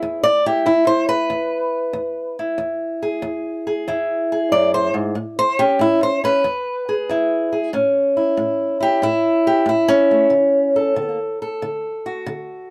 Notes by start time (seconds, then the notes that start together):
Already playing: B3 E4 G#4
0.02 E2
0.24 D5
0.46 E4 G4
0.66 E2 E4
0.87 C5
1.09 B4
1.30 E2
1.93 E2
2.39 E4
2.58 E2
3.03 G#4
3.22 E2
3.67 G#4
3.88 E2 E4
4.32 G#4
4.52 F#2 D5
4.74 C5
4.94 G#2
5.15 A2
5.39 C5
5.59 C#4 G4
5.79 A2 E4
6.03 C5
6.24 C#4 B4
6.44 E2
6.89 G#4
7.09 E2 E4
7.52 G#4
7.73 A2 C#4
8.17 E4
8.37 A2
8.80 E4 G4
9.02 A2 E4
9.47 G4
9.66 A2 E4
9.88 C#4
10.11 A3
10.30 D3
10.76 A4
10.96 D3
11.42 A4
11.62 D3
12.06 F#4
12.26 D3